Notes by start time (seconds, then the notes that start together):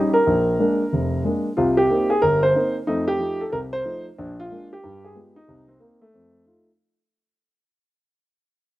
Already playing: G3 C#4 D#4
0.14 A#4
0.27 A#1
0.59 G#3 A#3 D4
0.93 F1
1.24 G#3 A#3 D4
1.57 C2 C3 F4
1.77 G4
1.90 A#3 C4 D#4
2.10 G#4
2.22 G1 A#4
2.43 C5
2.55 A#3 C4 D#4
2.87 F2 A3 D#4
3.08 G4
3.19 F3 A3 D#4
3.41 A4
3.50 C2 A4 A#4
3.73 C5
3.85 F3 A3 D#4
4.18 A#1 D4
4.40 F4
4.51 G#3 A#3 D4
4.73 G4
4.84 G2
5.05 G#4
5.15 G#3 B3 F4 G4
5.36 D#4
5.48 C2
5.68 C4
5.80 A#3 C4 D#4
6.01 A3
6.14 F2
6.46 A3 F4